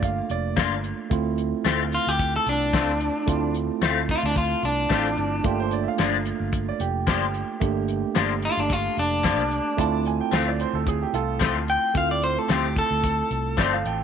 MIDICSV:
0, 0, Header, 1, 7, 480
1, 0, Start_track
1, 0, Key_signature, -1, "minor"
1, 0, Tempo, 542005
1, 983, Time_signature, 4, 2, 24, 8
1, 12430, End_track
2, 0, Start_track
2, 0, Title_t, "Upright piano"
2, 0, Program_c, 0, 0
2, 40, Note_on_c, 0, 77, 68
2, 264, Note_off_c, 0, 77, 0
2, 274, Note_on_c, 0, 74, 84
2, 502, Note_off_c, 0, 74, 0
2, 4834, Note_on_c, 0, 67, 80
2, 4947, Note_off_c, 0, 67, 0
2, 4956, Note_on_c, 0, 72, 81
2, 5058, Note_off_c, 0, 72, 0
2, 5075, Note_on_c, 0, 74, 74
2, 5166, Note_on_c, 0, 76, 54
2, 5188, Note_off_c, 0, 74, 0
2, 5193, Note_off_c, 0, 76, 0
2, 5209, Note_on_c, 0, 77, 78
2, 5898, Note_off_c, 0, 77, 0
2, 5921, Note_on_c, 0, 74, 69
2, 6021, Note_off_c, 0, 74, 0
2, 6029, Note_on_c, 0, 67, 73
2, 6259, Note_off_c, 0, 67, 0
2, 6272, Note_on_c, 0, 67, 82
2, 7199, Note_off_c, 0, 67, 0
2, 8676, Note_on_c, 0, 81, 99
2, 8903, Note_off_c, 0, 81, 0
2, 8921, Note_on_c, 0, 80, 68
2, 9031, Note_off_c, 0, 80, 0
2, 9039, Note_on_c, 0, 79, 79
2, 9140, Note_off_c, 0, 79, 0
2, 9152, Note_on_c, 0, 77, 80
2, 9266, Note_off_c, 0, 77, 0
2, 9280, Note_on_c, 0, 74, 72
2, 9381, Note_off_c, 0, 74, 0
2, 9395, Note_on_c, 0, 72, 78
2, 9508, Note_off_c, 0, 72, 0
2, 9519, Note_on_c, 0, 69, 79
2, 9620, Note_off_c, 0, 69, 0
2, 9637, Note_on_c, 0, 68, 71
2, 9749, Note_off_c, 0, 68, 0
2, 9763, Note_on_c, 0, 67, 75
2, 9862, Note_off_c, 0, 67, 0
2, 9868, Note_on_c, 0, 65, 78
2, 9876, Note_on_c, 0, 69, 97
2, 10208, Note_off_c, 0, 65, 0
2, 10227, Note_off_c, 0, 69, 0
2, 12038, Note_on_c, 0, 74, 86
2, 12152, Note_off_c, 0, 74, 0
2, 12165, Note_on_c, 0, 77, 76
2, 12265, Note_off_c, 0, 77, 0
2, 12274, Note_on_c, 0, 79, 85
2, 12430, Note_off_c, 0, 79, 0
2, 12430, End_track
3, 0, Start_track
3, 0, Title_t, "Clean electric guitar"
3, 0, Program_c, 1, 27
3, 1723, Note_on_c, 1, 65, 90
3, 1847, Note_off_c, 1, 65, 0
3, 1847, Note_on_c, 1, 67, 80
3, 2072, Note_off_c, 1, 67, 0
3, 2093, Note_on_c, 1, 69, 72
3, 2191, Note_off_c, 1, 69, 0
3, 2207, Note_on_c, 1, 62, 90
3, 3127, Note_off_c, 1, 62, 0
3, 3642, Note_on_c, 1, 65, 89
3, 3756, Note_off_c, 1, 65, 0
3, 3772, Note_on_c, 1, 62, 79
3, 3871, Note_off_c, 1, 62, 0
3, 3876, Note_on_c, 1, 65, 78
3, 4102, Note_off_c, 1, 65, 0
3, 4118, Note_on_c, 1, 62, 81
3, 5042, Note_off_c, 1, 62, 0
3, 7485, Note_on_c, 1, 65, 99
3, 7612, Note_off_c, 1, 65, 0
3, 7612, Note_on_c, 1, 62, 99
3, 7728, Note_off_c, 1, 62, 0
3, 7728, Note_on_c, 1, 65, 79
3, 7949, Note_off_c, 1, 65, 0
3, 7965, Note_on_c, 1, 62, 85
3, 8886, Note_off_c, 1, 62, 0
3, 10358, Note_on_c, 1, 79, 83
3, 10585, Note_off_c, 1, 79, 0
3, 10603, Note_on_c, 1, 77, 87
3, 10718, Note_off_c, 1, 77, 0
3, 10726, Note_on_c, 1, 74, 71
3, 10829, Note_off_c, 1, 74, 0
3, 10835, Note_on_c, 1, 72, 79
3, 10969, Note_off_c, 1, 72, 0
3, 10969, Note_on_c, 1, 69, 74
3, 11080, Note_off_c, 1, 69, 0
3, 11080, Note_on_c, 1, 67, 77
3, 11306, Note_off_c, 1, 67, 0
3, 11321, Note_on_c, 1, 69, 93
3, 12430, Note_off_c, 1, 69, 0
3, 12430, End_track
4, 0, Start_track
4, 0, Title_t, "Tine electric piano"
4, 0, Program_c, 2, 4
4, 0, Note_on_c, 2, 57, 74
4, 0, Note_on_c, 2, 58, 75
4, 0, Note_on_c, 2, 62, 73
4, 0, Note_on_c, 2, 65, 78
4, 944, Note_off_c, 2, 57, 0
4, 946, Note_off_c, 2, 58, 0
4, 949, Note_off_c, 2, 62, 0
4, 952, Note_off_c, 2, 65, 0
4, 975, Note_on_c, 2, 57, 74
4, 983, Note_on_c, 2, 60, 69
4, 988, Note_on_c, 2, 64, 67
4, 995, Note_on_c, 2, 65, 82
4, 2864, Note_off_c, 2, 57, 0
4, 2868, Note_off_c, 2, 60, 0
4, 2870, Note_off_c, 2, 64, 0
4, 2874, Note_off_c, 2, 65, 0
4, 2892, Note_on_c, 2, 57, 76
4, 2898, Note_on_c, 2, 60, 65
4, 2904, Note_on_c, 2, 64, 69
4, 2912, Note_on_c, 2, 65, 90
4, 4309, Note_off_c, 2, 57, 0
4, 4312, Note_off_c, 2, 60, 0
4, 4315, Note_off_c, 2, 64, 0
4, 4319, Note_off_c, 2, 65, 0
4, 4339, Note_on_c, 2, 57, 46
4, 4343, Note_on_c, 2, 60, 42
4, 4345, Note_on_c, 2, 64, 45
4, 4349, Note_on_c, 2, 65, 49
4, 4803, Note_off_c, 2, 57, 0
4, 4814, Note_on_c, 2, 57, 74
4, 4820, Note_on_c, 2, 58, 70
4, 4822, Note_off_c, 2, 65, 0
4, 4823, Note_off_c, 2, 60, 0
4, 4824, Note_off_c, 2, 64, 0
4, 4828, Note_on_c, 2, 62, 70
4, 4832, Note_on_c, 2, 65, 82
4, 6703, Note_off_c, 2, 57, 0
4, 6706, Note_off_c, 2, 58, 0
4, 6710, Note_off_c, 2, 62, 0
4, 6712, Note_off_c, 2, 65, 0
4, 6732, Note_on_c, 2, 57, 78
4, 6739, Note_on_c, 2, 58, 68
4, 6744, Note_on_c, 2, 62, 75
4, 6750, Note_on_c, 2, 67, 85
4, 8622, Note_off_c, 2, 57, 0
4, 8626, Note_off_c, 2, 58, 0
4, 8628, Note_off_c, 2, 62, 0
4, 8631, Note_off_c, 2, 67, 0
4, 8651, Note_on_c, 2, 57, 79
4, 8657, Note_on_c, 2, 60, 72
4, 8664, Note_on_c, 2, 64, 79
4, 8670, Note_on_c, 2, 65, 90
4, 10543, Note_off_c, 2, 57, 0
4, 10546, Note_off_c, 2, 60, 0
4, 10550, Note_off_c, 2, 64, 0
4, 10552, Note_off_c, 2, 65, 0
4, 10575, Note_on_c, 2, 57, 67
4, 10581, Note_on_c, 2, 60, 55
4, 10587, Note_on_c, 2, 64, 53
4, 10593, Note_on_c, 2, 65, 75
4, 12430, Note_off_c, 2, 57, 0
4, 12430, Note_off_c, 2, 60, 0
4, 12430, Note_off_c, 2, 64, 0
4, 12430, Note_off_c, 2, 65, 0
4, 12430, End_track
5, 0, Start_track
5, 0, Title_t, "Clean electric guitar"
5, 0, Program_c, 3, 27
5, 500, Note_on_c, 3, 58, 82
5, 511, Note_on_c, 3, 62, 82
5, 521, Note_on_c, 3, 65, 89
5, 652, Note_off_c, 3, 58, 0
5, 657, Note_off_c, 3, 62, 0
5, 662, Note_off_c, 3, 65, 0
5, 1458, Note_on_c, 3, 57, 72
5, 1467, Note_on_c, 3, 60, 84
5, 1477, Note_on_c, 3, 65, 91
5, 1610, Note_off_c, 3, 57, 0
5, 1615, Note_off_c, 3, 60, 0
5, 1620, Note_off_c, 3, 65, 0
5, 2419, Note_on_c, 3, 57, 72
5, 2431, Note_on_c, 3, 60, 79
5, 2439, Note_on_c, 3, 65, 82
5, 2571, Note_off_c, 3, 57, 0
5, 2577, Note_off_c, 3, 60, 0
5, 2581, Note_off_c, 3, 65, 0
5, 3381, Note_on_c, 3, 57, 88
5, 3391, Note_on_c, 3, 60, 79
5, 3401, Note_on_c, 3, 65, 92
5, 3532, Note_off_c, 3, 57, 0
5, 3537, Note_off_c, 3, 60, 0
5, 3542, Note_off_c, 3, 65, 0
5, 4335, Note_on_c, 3, 57, 73
5, 4346, Note_on_c, 3, 60, 67
5, 4354, Note_on_c, 3, 65, 82
5, 4489, Note_off_c, 3, 57, 0
5, 4495, Note_off_c, 3, 60, 0
5, 4499, Note_off_c, 3, 65, 0
5, 5300, Note_on_c, 3, 53, 72
5, 5306, Note_on_c, 3, 58, 78
5, 5314, Note_on_c, 3, 62, 87
5, 5318, Note_on_c, 3, 65, 75
5, 5451, Note_off_c, 3, 53, 0
5, 5455, Note_off_c, 3, 58, 0
5, 5458, Note_off_c, 3, 62, 0
5, 5461, Note_off_c, 3, 65, 0
5, 6261, Note_on_c, 3, 53, 81
5, 6266, Note_on_c, 3, 58, 80
5, 6275, Note_on_c, 3, 62, 84
5, 6279, Note_on_c, 3, 65, 97
5, 6412, Note_off_c, 3, 53, 0
5, 6415, Note_off_c, 3, 58, 0
5, 6419, Note_off_c, 3, 62, 0
5, 6421, Note_off_c, 3, 65, 0
5, 7218, Note_on_c, 3, 53, 75
5, 7225, Note_on_c, 3, 58, 82
5, 7231, Note_on_c, 3, 62, 84
5, 7236, Note_on_c, 3, 65, 84
5, 7370, Note_off_c, 3, 53, 0
5, 7374, Note_off_c, 3, 58, 0
5, 7377, Note_off_c, 3, 62, 0
5, 7379, Note_off_c, 3, 65, 0
5, 8180, Note_on_c, 3, 53, 79
5, 8186, Note_on_c, 3, 58, 76
5, 8193, Note_on_c, 3, 62, 85
5, 8198, Note_on_c, 3, 65, 79
5, 8331, Note_off_c, 3, 53, 0
5, 8334, Note_off_c, 3, 58, 0
5, 8338, Note_off_c, 3, 62, 0
5, 8340, Note_off_c, 3, 65, 0
5, 9137, Note_on_c, 3, 53, 77
5, 9142, Note_on_c, 3, 57, 81
5, 9147, Note_on_c, 3, 60, 82
5, 9154, Note_on_c, 3, 65, 85
5, 9290, Note_off_c, 3, 53, 0
5, 9293, Note_off_c, 3, 57, 0
5, 9295, Note_off_c, 3, 60, 0
5, 9299, Note_off_c, 3, 65, 0
5, 10093, Note_on_c, 3, 53, 85
5, 10101, Note_on_c, 3, 57, 78
5, 10108, Note_on_c, 3, 60, 85
5, 10114, Note_on_c, 3, 65, 104
5, 10249, Note_off_c, 3, 53, 0
5, 10253, Note_off_c, 3, 57, 0
5, 10256, Note_off_c, 3, 60, 0
5, 10259, Note_off_c, 3, 65, 0
5, 11058, Note_on_c, 3, 53, 68
5, 11066, Note_on_c, 3, 57, 69
5, 11071, Note_on_c, 3, 60, 72
5, 11079, Note_on_c, 3, 65, 77
5, 11212, Note_off_c, 3, 53, 0
5, 11216, Note_off_c, 3, 57, 0
5, 11218, Note_off_c, 3, 60, 0
5, 11222, Note_off_c, 3, 65, 0
5, 12019, Note_on_c, 3, 53, 81
5, 12024, Note_on_c, 3, 57, 86
5, 12031, Note_on_c, 3, 60, 84
5, 12037, Note_on_c, 3, 65, 81
5, 12173, Note_off_c, 3, 53, 0
5, 12176, Note_off_c, 3, 57, 0
5, 12179, Note_off_c, 3, 60, 0
5, 12182, Note_off_c, 3, 65, 0
5, 12430, End_track
6, 0, Start_track
6, 0, Title_t, "Fingered electric bass"
6, 0, Program_c, 4, 33
6, 0, Note_on_c, 4, 31, 80
6, 175, Note_off_c, 4, 31, 0
6, 264, Note_on_c, 4, 29, 96
6, 628, Note_off_c, 4, 29, 0
6, 628, Note_on_c, 4, 31, 85
6, 810, Note_off_c, 4, 31, 0
6, 985, Note_on_c, 4, 38, 87
6, 1347, Note_off_c, 4, 38, 0
6, 1461, Note_on_c, 4, 38, 93
6, 1740, Note_off_c, 4, 38, 0
6, 1833, Note_on_c, 4, 38, 84
6, 2099, Note_off_c, 4, 38, 0
6, 2182, Note_on_c, 4, 36, 90
6, 2548, Note_off_c, 4, 36, 0
6, 2548, Note_on_c, 4, 38, 88
6, 2730, Note_off_c, 4, 38, 0
6, 2903, Note_on_c, 4, 38, 92
6, 3266, Note_off_c, 4, 38, 0
6, 3379, Note_on_c, 4, 38, 86
6, 3658, Note_off_c, 4, 38, 0
6, 3747, Note_on_c, 4, 38, 84
6, 4015, Note_off_c, 4, 38, 0
6, 4100, Note_on_c, 4, 36, 77
6, 4317, Note_off_c, 4, 36, 0
6, 4341, Note_on_c, 4, 33, 80
6, 4558, Note_off_c, 4, 33, 0
6, 4580, Note_on_c, 4, 31, 75
6, 4797, Note_off_c, 4, 31, 0
6, 4821, Note_on_c, 4, 31, 96
6, 5185, Note_off_c, 4, 31, 0
6, 5303, Note_on_c, 4, 31, 93
6, 5581, Note_off_c, 4, 31, 0
6, 5667, Note_on_c, 4, 31, 88
6, 5935, Note_off_c, 4, 31, 0
6, 6022, Note_on_c, 4, 29, 94
6, 6390, Note_off_c, 4, 29, 0
6, 6390, Note_on_c, 4, 31, 77
6, 6571, Note_off_c, 4, 31, 0
6, 6743, Note_on_c, 4, 31, 99
6, 7106, Note_off_c, 4, 31, 0
6, 7223, Note_on_c, 4, 31, 90
6, 7501, Note_off_c, 4, 31, 0
6, 7590, Note_on_c, 4, 31, 88
6, 7857, Note_off_c, 4, 31, 0
6, 7946, Note_on_c, 4, 29, 84
6, 8311, Note_off_c, 4, 29, 0
6, 8311, Note_on_c, 4, 36, 89
6, 8492, Note_off_c, 4, 36, 0
6, 8663, Note_on_c, 4, 38, 94
6, 9026, Note_off_c, 4, 38, 0
6, 9142, Note_on_c, 4, 38, 97
6, 9420, Note_off_c, 4, 38, 0
6, 9506, Note_on_c, 4, 38, 95
6, 9775, Note_off_c, 4, 38, 0
6, 9860, Note_on_c, 4, 36, 96
6, 10230, Note_off_c, 4, 36, 0
6, 10230, Note_on_c, 4, 38, 78
6, 10412, Note_off_c, 4, 38, 0
6, 10582, Note_on_c, 4, 38, 96
6, 10946, Note_off_c, 4, 38, 0
6, 11064, Note_on_c, 4, 38, 88
6, 11343, Note_off_c, 4, 38, 0
6, 11429, Note_on_c, 4, 38, 88
6, 11698, Note_off_c, 4, 38, 0
6, 11784, Note_on_c, 4, 36, 91
6, 12019, Note_off_c, 4, 36, 0
6, 12024, Note_on_c, 4, 31, 81
6, 12242, Note_off_c, 4, 31, 0
6, 12264, Note_on_c, 4, 33, 80
6, 12430, Note_off_c, 4, 33, 0
6, 12430, End_track
7, 0, Start_track
7, 0, Title_t, "Drums"
7, 22, Note_on_c, 9, 42, 68
7, 23, Note_on_c, 9, 36, 81
7, 111, Note_off_c, 9, 42, 0
7, 112, Note_off_c, 9, 36, 0
7, 261, Note_on_c, 9, 42, 54
7, 350, Note_off_c, 9, 42, 0
7, 501, Note_on_c, 9, 42, 66
7, 501, Note_on_c, 9, 54, 100
7, 504, Note_on_c, 9, 36, 80
7, 510, Note_on_c, 9, 38, 106
7, 590, Note_off_c, 9, 42, 0
7, 590, Note_off_c, 9, 54, 0
7, 592, Note_off_c, 9, 36, 0
7, 599, Note_off_c, 9, 38, 0
7, 742, Note_on_c, 9, 42, 54
7, 831, Note_off_c, 9, 42, 0
7, 982, Note_on_c, 9, 42, 77
7, 984, Note_on_c, 9, 36, 104
7, 1071, Note_off_c, 9, 42, 0
7, 1072, Note_off_c, 9, 36, 0
7, 1221, Note_on_c, 9, 42, 59
7, 1310, Note_off_c, 9, 42, 0
7, 1463, Note_on_c, 9, 42, 71
7, 1463, Note_on_c, 9, 54, 103
7, 1472, Note_on_c, 9, 38, 98
7, 1551, Note_off_c, 9, 42, 0
7, 1551, Note_off_c, 9, 54, 0
7, 1560, Note_off_c, 9, 38, 0
7, 1701, Note_on_c, 9, 42, 58
7, 1790, Note_off_c, 9, 42, 0
7, 1942, Note_on_c, 9, 42, 79
7, 1943, Note_on_c, 9, 36, 87
7, 2030, Note_off_c, 9, 42, 0
7, 2032, Note_off_c, 9, 36, 0
7, 2181, Note_on_c, 9, 42, 63
7, 2269, Note_off_c, 9, 42, 0
7, 2421, Note_on_c, 9, 42, 77
7, 2421, Note_on_c, 9, 54, 98
7, 2422, Note_on_c, 9, 36, 80
7, 2430, Note_on_c, 9, 38, 98
7, 2510, Note_off_c, 9, 42, 0
7, 2510, Note_off_c, 9, 54, 0
7, 2511, Note_off_c, 9, 36, 0
7, 2519, Note_off_c, 9, 38, 0
7, 2661, Note_on_c, 9, 42, 59
7, 2750, Note_off_c, 9, 42, 0
7, 2901, Note_on_c, 9, 42, 80
7, 2902, Note_on_c, 9, 36, 97
7, 2989, Note_off_c, 9, 42, 0
7, 2990, Note_off_c, 9, 36, 0
7, 3139, Note_on_c, 9, 42, 55
7, 3228, Note_off_c, 9, 42, 0
7, 3380, Note_on_c, 9, 42, 84
7, 3380, Note_on_c, 9, 54, 96
7, 3389, Note_on_c, 9, 38, 106
7, 3468, Note_off_c, 9, 42, 0
7, 3468, Note_off_c, 9, 54, 0
7, 3477, Note_off_c, 9, 38, 0
7, 3623, Note_on_c, 9, 36, 76
7, 3623, Note_on_c, 9, 42, 61
7, 3711, Note_off_c, 9, 36, 0
7, 3712, Note_off_c, 9, 42, 0
7, 3860, Note_on_c, 9, 42, 66
7, 3862, Note_on_c, 9, 36, 85
7, 3949, Note_off_c, 9, 42, 0
7, 3950, Note_off_c, 9, 36, 0
7, 4101, Note_on_c, 9, 42, 59
7, 4190, Note_off_c, 9, 42, 0
7, 4340, Note_on_c, 9, 42, 63
7, 4340, Note_on_c, 9, 54, 93
7, 4341, Note_on_c, 9, 36, 72
7, 4349, Note_on_c, 9, 38, 96
7, 4429, Note_off_c, 9, 42, 0
7, 4429, Note_off_c, 9, 54, 0
7, 4430, Note_off_c, 9, 36, 0
7, 4438, Note_off_c, 9, 38, 0
7, 4581, Note_on_c, 9, 42, 52
7, 4670, Note_off_c, 9, 42, 0
7, 4817, Note_on_c, 9, 42, 68
7, 4821, Note_on_c, 9, 36, 96
7, 4906, Note_off_c, 9, 42, 0
7, 4910, Note_off_c, 9, 36, 0
7, 5059, Note_on_c, 9, 42, 52
7, 5148, Note_off_c, 9, 42, 0
7, 5298, Note_on_c, 9, 42, 76
7, 5298, Note_on_c, 9, 54, 91
7, 5307, Note_on_c, 9, 38, 98
7, 5387, Note_off_c, 9, 42, 0
7, 5387, Note_off_c, 9, 54, 0
7, 5395, Note_off_c, 9, 38, 0
7, 5540, Note_on_c, 9, 42, 61
7, 5628, Note_off_c, 9, 42, 0
7, 5779, Note_on_c, 9, 42, 72
7, 5781, Note_on_c, 9, 36, 75
7, 5868, Note_off_c, 9, 42, 0
7, 5870, Note_off_c, 9, 36, 0
7, 6022, Note_on_c, 9, 42, 66
7, 6110, Note_off_c, 9, 42, 0
7, 6261, Note_on_c, 9, 42, 73
7, 6261, Note_on_c, 9, 54, 99
7, 6263, Note_on_c, 9, 36, 75
7, 6270, Note_on_c, 9, 38, 93
7, 6350, Note_off_c, 9, 42, 0
7, 6350, Note_off_c, 9, 54, 0
7, 6352, Note_off_c, 9, 36, 0
7, 6358, Note_off_c, 9, 38, 0
7, 6502, Note_on_c, 9, 42, 54
7, 6590, Note_off_c, 9, 42, 0
7, 6741, Note_on_c, 9, 42, 77
7, 6744, Note_on_c, 9, 36, 94
7, 6830, Note_off_c, 9, 42, 0
7, 6832, Note_off_c, 9, 36, 0
7, 6981, Note_on_c, 9, 42, 60
7, 7069, Note_off_c, 9, 42, 0
7, 7219, Note_on_c, 9, 42, 75
7, 7219, Note_on_c, 9, 54, 102
7, 7228, Note_on_c, 9, 38, 104
7, 7307, Note_off_c, 9, 42, 0
7, 7307, Note_off_c, 9, 54, 0
7, 7316, Note_off_c, 9, 38, 0
7, 7461, Note_on_c, 9, 42, 65
7, 7550, Note_off_c, 9, 42, 0
7, 7704, Note_on_c, 9, 36, 79
7, 7704, Note_on_c, 9, 42, 77
7, 7792, Note_off_c, 9, 42, 0
7, 7793, Note_off_c, 9, 36, 0
7, 7943, Note_on_c, 9, 42, 54
7, 8032, Note_off_c, 9, 42, 0
7, 8184, Note_on_c, 9, 36, 72
7, 8184, Note_on_c, 9, 42, 75
7, 8184, Note_on_c, 9, 54, 93
7, 8193, Note_on_c, 9, 38, 91
7, 8272, Note_off_c, 9, 42, 0
7, 8272, Note_off_c, 9, 54, 0
7, 8273, Note_off_c, 9, 36, 0
7, 8281, Note_off_c, 9, 38, 0
7, 8424, Note_on_c, 9, 42, 53
7, 8513, Note_off_c, 9, 42, 0
7, 8665, Note_on_c, 9, 36, 97
7, 8665, Note_on_c, 9, 42, 72
7, 8753, Note_off_c, 9, 36, 0
7, 8753, Note_off_c, 9, 42, 0
7, 8904, Note_on_c, 9, 42, 55
7, 8993, Note_off_c, 9, 42, 0
7, 9143, Note_on_c, 9, 42, 68
7, 9143, Note_on_c, 9, 54, 103
7, 9152, Note_on_c, 9, 38, 113
7, 9231, Note_off_c, 9, 42, 0
7, 9231, Note_off_c, 9, 54, 0
7, 9240, Note_off_c, 9, 38, 0
7, 9385, Note_on_c, 9, 42, 59
7, 9473, Note_off_c, 9, 42, 0
7, 9623, Note_on_c, 9, 36, 78
7, 9624, Note_on_c, 9, 42, 72
7, 9712, Note_off_c, 9, 36, 0
7, 9713, Note_off_c, 9, 42, 0
7, 9865, Note_on_c, 9, 42, 64
7, 9953, Note_off_c, 9, 42, 0
7, 10104, Note_on_c, 9, 36, 76
7, 10106, Note_on_c, 9, 42, 73
7, 10106, Note_on_c, 9, 54, 96
7, 10115, Note_on_c, 9, 38, 98
7, 10193, Note_off_c, 9, 36, 0
7, 10194, Note_off_c, 9, 42, 0
7, 10194, Note_off_c, 9, 54, 0
7, 10203, Note_off_c, 9, 38, 0
7, 10344, Note_on_c, 9, 42, 55
7, 10433, Note_off_c, 9, 42, 0
7, 10581, Note_on_c, 9, 42, 80
7, 10583, Note_on_c, 9, 36, 100
7, 10670, Note_off_c, 9, 42, 0
7, 10671, Note_off_c, 9, 36, 0
7, 10820, Note_on_c, 9, 42, 56
7, 10908, Note_off_c, 9, 42, 0
7, 11062, Note_on_c, 9, 42, 82
7, 11062, Note_on_c, 9, 54, 101
7, 11071, Note_on_c, 9, 38, 96
7, 11151, Note_off_c, 9, 42, 0
7, 11151, Note_off_c, 9, 54, 0
7, 11159, Note_off_c, 9, 38, 0
7, 11304, Note_on_c, 9, 36, 79
7, 11304, Note_on_c, 9, 42, 63
7, 11392, Note_off_c, 9, 42, 0
7, 11393, Note_off_c, 9, 36, 0
7, 11544, Note_on_c, 9, 42, 83
7, 11545, Note_on_c, 9, 36, 72
7, 11633, Note_off_c, 9, 42, 0
7, 11634, Note_off_c, 9, 36, 0
7, 11785, Note_on_c, 9, 42, 59
7, 11873, Note_off_c, 9, 42, 0
7, 12025, Note_on_c, 9, 36, 81
7, 12025, Note_on_c, 9, 42, 74
7, 12025, Note_on_c, 9, 54, 95
7, 12034, Note_on_c, 9, 38, 86
7, 12114, Note_off_c, 9, 36, 0
7, 12114, Note_off_c, 9, 42, 0
7, 12114, Note_off_c, 9, 54, 0
7, 12123, Note_off_c, 9, 38, 0
7, 12268, Note_on_c, 9, 42, 54
7, 12356, Note_off_c, 9, 42, 0
7, 12430, End_track
0, 0, End_of_file